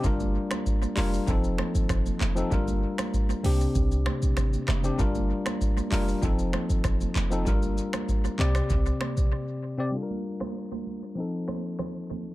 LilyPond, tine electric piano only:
\new Staff \with { instrumentName = "Tine electric piano" } { \time 4/4 \key g \minor \tempo 4 = 97 <g d' f' bes'>4 r8 <g d' f' bes'>8 <f c' ees' a'>4. r16 <f c' ees' a'>16 | <g d' f' bes'>4 r8 <c c' d' g'>4. r8. <c c' d' g'>16 | <g d' f' bes'>4 r8 <g d' f' bes'>8 <f c' ees' a'>4. r16 <f c' ees' a'>16 | <g d' f' bes'>4 r8 <c c' g' d''>4. r8. <c c' g' d''>16 |
<g d' f' bes'>2 <f c' ees' a'>2 | }